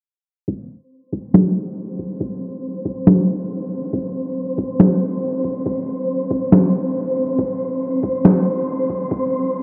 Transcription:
0.48 9.63 C4 medium
0.48 9.63 C5 medium
0.48 kick loud
1.13 kick medium
1.34 snare loud
1.99 kick medium
2.20 kick loud
2.85 kick loud
3.07 snare loud
3.93 kick loud
4.58 kick loud
4.80 snare loud
5.44 kick medium
5.66 kick loud
6.31 kick loud
6.52 snare loud
7.38 kick loud
8.03 kick loud
8.25 snare loud
8.90 kick medium
9.11 kick loud

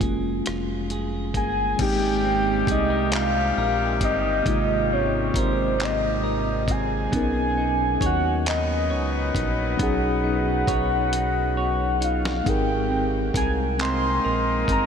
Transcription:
0.00 0.42 F1 medium
0.00 1.74 F#3 medium
0.00 1.79 F#3 medium
0.00 1.75 G#3 medium
0.00 1.35 A#3 medium
0.00 1.76 A#3 medium
0.00 1.77 C#4 medium
0.00 1.77 F4 medium
0.00 0.91 G#4 medium
0.00 kick medium
0.00 closed hi-hat medium
0.46 1.37 F1 medium
0.46 1.88 F4 soft
0.46 cross-stick loud
0.46 closed hi-hat medium
0.90 2.69 G#4 medium
0.90 closed hi-hat medium
1.34 1.76 G1 medium
1.34 2.24 A#3 medium
1.34 1.82 G#5 loud
1.34 kick medium
1.34 closed hi-hat medium
1.77 2.64 G#1 loud
1.77 6.64 C3 medium
1.77 6.64 D#3 medium
1.77 6.64 G3 medium
1.77 4.41 G#3 medium
1.77 4.46 G#3 medium
1.77 4.41 A#3 medium
1.77 4.42 C4 medium
1.77 6.64 G4 medium
1.77 kick loud
1.77 closed hi-hat medium
1.77 crash loud
1.81 4.43 D#4 medium
1.81 4.43 G4 medium
1.81 2.69 G5 loud
2.25 3.12 C4 medium
2.67 3.53 C2 medium
2.67 2.90 G#4 medium
2.67 3.11 D#5 loud
2.67 kick loud
2.67 closed hi-hat medium
2.90 3.57 A#4 medium
3.12 4.02 C4 medium
3.12 3.99 F5 loud
3.12 clap loud
3.12 closed hi-hat medium
3.58 4.03 A#1 medium
3.58 5.35 A#4 medium
4.01 4.42 G1 loud
4.01 4.91 C4 medium
4.01 4.94 D#5 loud
4.01 kick medium
4.01 closed hi-hat medium
4.43 5.31 G#1 loud
4.43 7.09 C3 medium
4.43 7.07 G#3 medium
4.43 7.08 A#3 medium
4.43 kick loud
4.43 closed hi-hat medium
4.47 7.11 G#3 medium
4.47 7.09 D#4 medium
4.47 7.10 F4 medium
4.93 5.77 C4 medium
4.93 5.40 C#5 medium
5.34 7.09 G#1 loud
5.34 6.23 A#4 medium
5.34 kick loud
5.34 closed hi-hat medium
5.38 5.85 C5 loud
5.79 6.67 C4 medium
5.79 clap loud
5.79 closed hi-hat medium
5.84 6.72 D#5 loud
6.24 8.01 A#4 medium
6.68 7.21 C4 medium
6.68 8.03 G#5 loud
6.68 kick medium
6.68 closed hi-hat medium
7.11 7.98 B1 medium
7.11 9.74 F#3 medium
7.11 9.78 B3 medium
7.11 9.75 B3 medium
7.11 9.76 C#4 medium
7.11 kick loud
7.11 closed hi-hat medium
7.15 9.76 D#4 medium
7.15 9.77 A#4 medium
7.57 8.46 D#4 medium
8.01 8.94 D#2 loud
8.01 8.89 C#5 medium
8.01 kick medium
8.01 closed hi-hat medium
8.06 8.45 F#5 loud
8.46 11.98 F#3 medium
8.46 11.98 B3 medium
8.46 11.98 D#4 medium
8.46 9.35 D#4 medium
8.46 11.98 B4 medium
8.46 9.32 D#5 medium
8.46 clap loud
8.46 closed hi-hat medium
8.90 9.32 C#2 medium
8.90 10.67 C#5 medium
9.35 9.76 A#1 loud
9.35 10.24 D#4 medium
9.35 kick medium
9.35 closed hi-hat medium
9.77 10.64 B1 loud
9.77 12.41 F#3 medium
9.77 12.41 B3 medium
9.77 12.46 B3 medium
9.77 12.42 C#4 medium
9.77 12.43 D#4 medium
9.77 kick loud
9.77 closed hi-hat medium
9.82 12.44 G#4 medium
9.82 12.05 F#5 medium
10.24 11.14 D#4 medium
10.67 12.42 B1 loud
10.67 11.56 C#5 medium
10.67 kick medium
10.67 closed hi-hat medium
11.13 12.00 D#4 medium
11.13 closed hi-hat medium
11.57 12.55 C#5 medium
12.01 14.86 D#4 medium
12.01 12.50 F5 medium
12.01 closed hi-hat medium
12.25 snare loud
12.43 13.31 G#1 loud
12.43 14.86 G#3 medium
12.43 14.86 C4 medium
12.43 14.86 D#4 medium
12.43 kick loud
12.43 closed hi-hat medium
12.47 14.86 G#4 medium
12.47 14.86 A#4 medium
12.47 13.36 G5 loud
12.91 13.78 C4 medium
13.34 14.20 C2 loud
13.34 14.24 A#4 medium
13.34 13.51 G#5 loud
13.34 kick loud
13.34 closed hi-hat medium
13.79 14.86 G#3 medium
13.79 14.86 A#3 medium
13.79 14.67 C4 medium
13.79 14.86 D#4 medium
13.79 14.86 A#4 medium
13.79 14.65 C6 loud
13.79 clap loud
13.79 closed hi-hat medium
14.25 14.65 A#1 medium
14.25 14.86 A#4 medium
14.68 14.86 G1 medium
14.68 14.86 C4 medium
14.68 14.86 A#5 loud
14.68 kick medium
14.68 closed hi-hat medium

